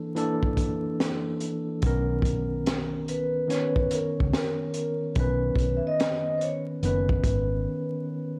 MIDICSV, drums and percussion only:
0, 0, Header, 1, 2, 480
1, 0, Start_track
1, 0, Key_signature, 5, "major"
1, 0, Tempo, 833333
1, 1050, Time_signature, 4, 2, 24, 8
1, 4835, End_track
2, 0, Start_track
2, 0, Title_t, "Drums"
2, 94, Note_on_c, 9, 42, 64
2, 152, Note_off_c, 9, 42, 0
2, 246, Note_on_c, 9, 36, 89
2, 303, Note_off_c, 9, 36, 0
2, 329, Note_on_c, 9, 36, 95
2, 330, Note_on_c, 9, 42, 86
2, 386, Note_off_c, 9, 36, 0
2, 387, Note_off_c, 9, 42, 0
2, 577, Note_on_c, 9, 38, 119
2, 581, Note_on_c, 9, 42, 91
2, 635, Note_off_c, 9, 38, 0
2, 639, Note_off_c, 9, 42, 0
2, 809, Note_on_c, 9, 42, 64
2, 866, Note_off_c, 9, 42, 0
2, 1048, Note_on_c, 9, 42, 78
2, 1053, Note_on_c, 9, 36, 106
2, 1106, Note_off_c, 9, 42, 0
2, 1110, Note_off_c, 9, 36, 0
2, 1280, Note_on_c, 9, 36, 89
2, 1296, Note_on_c, 9, 42, 71
2, 1338, Note_off_c, 9, 36, 0
2, 1354, Note_off_c, 9, 42, 0
2, 1534, Note_on_c, 9, 42, 86
2, 1539, Note_on_c, 9, 38, 121
2, 1592, Note_off_c, 9, 42, 0
2, 1597, Note_off_c, 9, 38, 0
2, 1775, Note_on_c, 9, 42, 65
2, 1832, Note_off_c, 9, 42, 0
2, 2016, Note_on_c, 9, 42, 63
2, 2025, Note_on_c, 9, 38, 34
2, 2074, Note_off_c, 9, 42, 0
2, 2082, Note_off_c, 9, 38, 0
2, 2165, Note_on_c, 9, 36, 91
2, 2223, Note_off_c, 9, 36, 0
2, 2251, Note_on_c, 9, 42, 85
2, 2309, Note_off_c, 9, 42, 0
2, 2421, Note_on_c, 9, 36, 85
2, 2478, Note_off_c, 9, 36, 0
2, 2496, Note_on_c, 9, 38, 117
2, 2501, Note_on_c, 9, 42, 92
2, 2554, Note_off_c, 9, 38, 0
2, 2558, Note_off_c, 9, 42, 0
2, 2728, Note_on_c, 9, 42, 65
2, 2786, Note_off_c, 9, 42, 0
2, 2969, Note_on_c, 9, 42, 79
2, 2972, Note_on_c, 9, 36, 113
2, 3026, Note_off_c, 9, 42, 0
2, 3030, Note_off_c, 9, 36, 0
2, 3200, Note_on_c, 9, 36, 82
2, 3216, Note_on_c, 9, 42, 72
2, 3258, Note_off_c, 9, 36, 0
2, 3274, Note_off_c, 9, 42, 0
2, 3454, Note_on_c, 9, 42, 86
2, 3459, Note_on_c, 9, 38, 117
2, 3512, Note_off_c, 9, 42, 0
2, 3517, Note_off_c, 9, 38, 0
2, 3693, Note_on_c, 9, 42, 62
2, 3751, Note_off_c, 9, 42, 0
2, 3933, Note_on_c, 9, 42, 66
2, 3991, Note_off_c, 9, 42, 0
2, 4085, Note_on_c, 9, 36, 94
2, 4142, Note_off_c, 9, 36, 0
2, 4168, Note_on_c, 9, 36, 96
2, 4169, Note_on_c, 9, 42, 81
2, 4226, Note_off_c, 9, 36, 0
2, 4227, Note_off_c, 9, 42, 0
2, 4835, End_track
0, 0, End_of_file